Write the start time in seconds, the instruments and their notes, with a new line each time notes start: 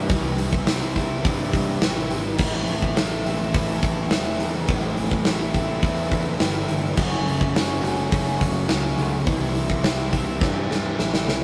Already playing: overdriven electric guitar G3 C4 E4
0.09 picked electric bass C2, overdriven electric guitar C3 E3 G3 C4 E4, kick, open hi-hat
0.38 open hi-hat
0.53 kick
0.65 picked electric bass C2, overdriven electric guitar E3 G3 C4 E4, snare, open hi-hat
0.94 overdriven electric guitar G3 C4 E4, kick, open hi-hat
1.22 picked electric bass G2, overdriven electric guitar C3 E3 G3 C4 E4, kick
1.26 open hi-hat
1.53 picked electric bass G2, kick, open hi-hat
1.81 picked electric bass A1, overdriven electric guitar E3 G3 C4 E4, snare, open hi-hat
2.11 picked electric bass G#1, open hi-hat
2.37 picked electric bass A1, overdriven electric guitar A2 E3 A3 C4 E4, kick, crash
2.67 picked electric bass A1, open hi-hat
2.82 kick
2.95 picked electric bass A1, overdriven electric guitar E3 A3 C4 E4, snare, open hi-hat
3.25 picked electric bass A1, overdriven electric guitar A3 C4 E4, open hi-hat
3.53 picked electric bass A1, overdriven electric guitar A2 E3 A3 C4 E4, kick, open hi-hat
3.82 picked electric bass A1, kick, open hi-hat
4.11 picked electric bass E1, overdriven electric guitar E3 A3 C4 E4, snare, open hi-hat
4.40 picked electric bass E2, open hi-hat
4.68 picked electric bass A1, overdriven electric guitar A2 E3 A3, kick, open hi-hat
4.72 overdriven electric guitar C4 E4
4.97 open hi-hat
5.11 kick
5.24 picked electric bass A1, overdriven electric guitar E3 A3 C4 E4, snare, open hi-hat
5.53 overdriven electric guitar A3 C4 E4, kick, open hi-hat
5.81 picked electric bass E2, overdriven electric guitar A2 E3 A3 C4 E4, kick, open hi-hat
6.11 picked electric bass E2, kick, open hi-hat
6.39 picked electric bass G1, overdriven electric guitar E3 A3 C4 E4, snare, open hi-hat
6.68 picked electric bass G1, open hi-hat
6.96 picked electric bass F#1, overdriven electric guitar F#2 C#3 F#3 A3 C#4 F#4, kick, crash
7.26 picked electric bass F#1, open hi-hat
7.41 kick
7.54 picked electric bass F#1, overdriven electric guitar F#3 A3 C#4 F#4, snare, open hi-hat
7.82 picked electric bass F#1, overdriven electric guitar F#3 A3 C#4 F#4, open hi-hat
8.11 picked electric bass F#1, overdriven electric guitar F#2 C#3 F#3 A3 C#4 F#4, kick, open hi-hat
8.41 picked electric bass F#1, kick, open hi-hat
8.68 picked electric bass C#2, overdriven electric guitar F#3 A3 C#4 F#4, snare, open hi-hat
8.98 picked electric bass C#2, open hi-hat
9.26 picked electric bass C2, overdriven electric guitar C3 E3 G3 C4 E4, kick, open hi-hat
9.55 open hi-hat
9.70 kick
9.82 picked electric bass C2, overdriven electric guitar E3 G3 C4 E4, snare, open hi-hat
10.11 overdriven electric guitar G3 C4 E4, kick, open hi-hat
10.39 picked electric bass G2, overdriven electric guitar C3 E3 G3 C4 E4, kick, snare
10.69 picked electric bass G2, snare
10.95 picked electric bass A1, overdriven electric guitar E3 G3 C4, snare
10.99 overdriven electric guitar E4
11.14 snare
11.27 picked electric bass C2, snare